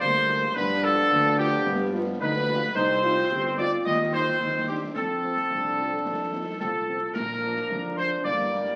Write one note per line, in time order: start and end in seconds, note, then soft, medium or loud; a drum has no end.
0.00 0.47 D2 loud
0.00 0.57 G3 medium
0.00 0.57 A#3 medium
0.00 0.52 A#3 medium
0.00 0.52 C5 loud
0.00 0.52 C6 loud
0.00 concert bass drum medium
0.00 snare medium
0.28 0.38 G3 medium
0.28 0.38 A#3 medium
0.28 0.38 D4 medium
0.55 1.02 G2 loud
0.55 2.72 F3 loud
0.55 2.72 B3 medium
0.55 1.62 D4 loud
0.55 0.83 B4 loud
0.55 0.84 B4 loud
0.55 0.62 B5 loud
0.55 concert bass drum loud
0.55 snare medium
0.55 crash soft
0.83 0.94 G3 medium
0.83 0.94 B3 medium
0.83 0.94 F4 medium
0.83 1.38 A4 loud
0.83 1.39 A4 loud
0.83 1.40 A5 loud
0.98 snare medium
1.11 1.57 D2 loud
1.11 concert bass drum medium
1.38 1.48 G3 medium
1.38 1.48 B3 medium
1.38 1.48 F4 medium
1.38 1.90 G4 loud
1.38 1.93 G5 loud
1.66 2.12 G2 loud
1.66 2.17 B3 loud
1.66 concert bass drum loud
1.66 snare medium
1.93 2.03 G3 medium
1.93 2.03 B3 medium
1.93 2.03 F4 medium
2.21 2.67 D2 loud
2.21 2.33 D#4 loud
2.21 2.72 B4 loud
2.21 2.72 B5 loud
2.21 concert bass drum loud
2.21 snare medium
2.48 2.58 G3 medium
2.48 2.58 B3 medium
2.48 2.61 D4 medium
2.48 2.58 F4 medium
2.75 3.21 C2 loud
2.75 3.82 D#3 loud
2.75 3.82 C4 loud
2.75 3.01 D#4 loud
2.75 3.54 C5 loud
2.75 3.58 C5 loud
2.75 3.54 C6 loud
2.75 concert bass drum medium
2.75 snare medium
2.75 crash soft
3.03 3.13 G3 medium
3.03 3.13 C4 medium
3.03 3.13 D#4 medium
3.03 3.29 F4 loud
3.17 snare medium
3.30 3.76 G1 loud
3.30 3.43 G4 medium
3.30 concert bass drum medium
3.58 3.68 G3 medium
3.58 3.68 C4 medium
3.58 3.68 D#4 medium
3.58 4.37 F4 loud
3.58 3.83 D5 loud
3.58 3.71 D5 loud
3.58 3.83 D6 loud
3.58 snare medium
3.85 4.31 D#2 loud
3.85 4.91 D#3 medium
3.85 4.91 C4 medium
3.85 4.11 D#5 loud
3.85 3.99 D#5 loud
3.85 3.91 D#6 loud
3.85 concert bass drum loud
3.85 snare medium
4.12 4.22 G3 medium
4.12 4.23 C4 medium
4.12 4.23 D#4 medium
4.12 4.68 C5 loud
4.12 4.64 C5 loud
4.12 4.64 C6 loud
4.40 4.86 D#2 medium
4.40 4.69 D#4 medium
4.40 concert bass drum medium
4.40 snare medium
4.67 4.78 G3 medium
4.67 4.78 C4 medium
4.67 4.97 D4 medium
4.67 4.78 D#4 medium
4.67 4.80 G4 medium
4.67 4.81 G4 medium
4.67 4.73 G5 medium
4.95 5.37 F2 medium
4.95 6.43 F3 medium
4.95 5.45 C4 medium
4.95 6.43 C4 medium
4.95 6.56 A4 medium
4.95 6.56 A4 loud
4.95 6.56 A5 medium
4.95 concert bass drum medium
4.95 snare medium
4.95 crash soft
5.23 5.33 F3 medium
5.23 5.33 C4 medium
5.37 snare medium
5.50 5.96 C2 medium
5.50 6.34 D4 medium
5.50 concert bass drum medium
5.78 5.88 F3 medium
5.78 5.88 C4 medium
6.05 6.51 F2 medium
6.05 concert bass drum medium
6.05 snare medium
6.33 6.42 F3 medium
6.33 6.43 C4 medium
6.33 6.61 D#4 medium
6.59 7.06 C2 medium
6.59 6.72 F3 medium
6.59 6.72 C4 medium
6.59 7.15 F4 medium
6.59 7.11 A4 medium
6.59 7.11 A5 medium
6.59 concert bass drum medium
6.59 snare medium
6.87 6.98 F3 medium
6.87 6.98 C4 medium
7.14 7.61 A#2 medium
7.14 8.21 F3 medium
7.14 8.21 D4 medium
7.14 7.93 A#4 loud
7.14 7.94 A#4 medium
7.14 7.93 A#5 medium
7.14 concert bass drum loud
7.14 snare medium
7.14 crash medium
7.43 7.53 F3 medium
7.43 7.53 A#3 medium
7.43 7.53 D4 medium
7.56 snare medium
7.70 8.15 F2 medium
7.70 8.25 D4 medium
7.70 concert bass drum medium
7.96 8.07 F3 medium
7.96 8.07 A#3 medium
7.96 8.07 D4 medium
7.96 8.25 C5 medium
7.96 8.10 C5 loud
7.96 8.22 C6 medium
7.96 snare medium
8.24 8.70 G2 loud
8.24 8.76 G3 medium
8.24 8.76 A#3 medium
8.24 8.76 D5 loud
8.24 8.75 D5 loud
8.24 8.57 D6 loud
8.24 concert bass drum medium
8.24 snare medium
8.52 8.62 G3 medium
8.52 8.62 A#3 medium
8.52 8.62 D4 medium